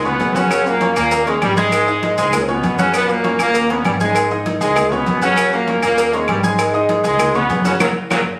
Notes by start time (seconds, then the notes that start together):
Already playing: C#2
0.05 B2 B3 C#4 C#5 C#6, high conga, low conga, maracas
0.20 F#2, cowbell, high conga, low timbale, low agogo, maracas
0.34 C#3 F#3 C#4 F#4 F#5, cowbell, high conga, low agogo, maracas
0.50 F#3 F#4 F#5, cowbell, high conga, low agogo, claves, maracas
0.66 A#2 A#3, high conga, maracas
0.81 C#4 C#5 C#6, cowbell, high conga, low agogo, maracas
0.96 D#2 A#2 A#3, cowbell, high conga, low agogo, claves, maracas
1.11 A#3 A#4 A#5, cowbell, high conga, maracas
1.27 G#2 G#3 C#4 C#5 C#6, high conga, low agogo, maracas
1.42 G#1 G2 G3, cowbell, high conga, low agogo, claves, maracas
1.57 G#2 G#3 G#4 G#5 G#6, high conga, maracas
1.72 cowbell, high conga, low agogo, claves, maracas
1.87 D#4 D#5 D#6, high conga, maracas
2.03 cowbell, high conga, low agogo, maracas
2.18 C#2 G#2 G#3 G#4 G#5, cowbell, high conga, low agogo, maracas
2.33 cowbell, high conga, low conga, low agogo, claves, maracas
2.41 C#4
2.48 B2 B3 C#4 C#5 C#6, high conga, low conga, maracas
2.63 F#2, cowbell, high conga, low agogo, maracas
2.78 C#3 F#3 C#4 F#4 F#5, cowbell, high conga, low agogo, maracas
2.93 B2 F#3 B3 F#4 F#5, cowbell, low agogo, claves, maracas
3.09 A#2 A#3, high conga, maracas
3.24 C#4 C#5 C#6, cowbell, high conga, low agogo, maracas
3.39 D#2 A#2 A#3, cowbell, high conga, low agogo, claves, maracas
3.54 A#3 A#4 A#5, cowbell, high conga, maracas
3.70 B2 B3 C#4 C#5 C#6, high conga, low agogo, maracas
3.85 G#1 G2 G3, cowbell, high conga, low agogo, claves, maracas
4.00 G#2 G#3 G#4 G#5 G#6, high conga, maracas
4.15 cowbell, low agogo, claves, maracas
4.31 D#4 D#5 D#6, high conga, maracas
4.46 cowbell, high conga, low agogo, maracas
4.61 C#2 G#2 G#3 G#4 G#5, cowbell, low agogo, maracas
4.76 cowbell, high conga, low conga, low agogo, claves, maracas
4.92 B2 B3 C#4 C#5 C#6, high conga, low conga, maracas
5.06 F#2, cowbell, high conga, low agogo, maracas
5.22 C#3 F#3 C#4 F#4 F#5, cowbell, high conga, low agogo, maracas
5.36 F#3 F#4 F#5, cowbell, low agogo, claves, maracas
5.52 A#2 A#3, high conga, maracas
5.67 C#4 C#5 C#6, cowbell, high conga, low agogo, maracas
5.82 D#2 A#2 A#3, cowbell, high conga, low agogo, claves, maracas
5.98 A#3 A#4 A#5, cowbell, high conga, maracas
6.13 G#2 G#3 C#4 C#5 C#6, high conga, low agogo, maracas
6.28 G#1 G2 G3, cowbell, high conga, low agogo, claves, maracas
6.43 G#2 G#3 G#4 G#5 G#6, high conga, maracas
6.59 cowbell, high conga, low agogo, claves, maracas
6.74 D#4 D#5 D#6, high conga, maracas
6.89 cowbell, high conga, low agogo, maracas
7.03 C#2 G#2 G#3 G#4 G#5, cowbell, high conga, low agogo, maracas
7.19 cowbell, high conga, low conga, low agogo, claves, maracas
7.35 B2 B3 C#4 C#5 C#6, high conga, low conga, maracas
7.50 F#2, cowbell, high conga, low timbale, low agogo, maracas
7.65 C#3 F#3 C#4 F#4 F#5, cowbell, high conga, low agogo, maracas
7.80 F#1 A#2 C#3 F#3 A#4 C#5 F#5, cowbell, high conga, high timbale, claves, maracas
8.10 F#1 A#2 C#3 F#3 A#4 C#5 F#5, cowbell, high conga, high timbale, claves, maracas